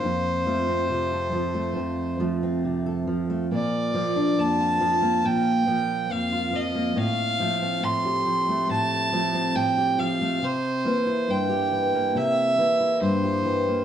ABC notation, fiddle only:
X:1
M:4/4
L:1/8
Q:1/4=69
K:Fmix
V:1 name="Fiddle"
c4- c z3 | d2 a2 g2 f e | f2 c'2 a2 g f | c2 g2 =e2 c2 |]